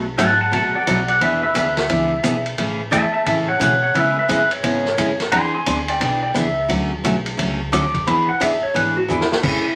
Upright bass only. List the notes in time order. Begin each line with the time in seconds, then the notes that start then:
Already playing: B1
0.18 G#1
0.52 A1
0.74 muted upright bass stroke
0.87 B1
1.21 E2
1.55 D2
1.89 C#2
2.24 B1
2.58 A1
2.92 E2
3.26 A2
3.60 B2
3.95 C#3
4.29 F#2
4.64 G#2
4.98 F#2
5.32 E2
5.66 D2
6.01 B1
6.35 C#2
6.70 D2
7.04 B1
7.38 C#2
7.73 D2
8.07 E2
8.29 muted upright bass stroke
8.41 F#2
8.64 muted upright bass stroke
8.76 G#2
9.10 E2
9.44 A2
9.65 muted upright bass stroke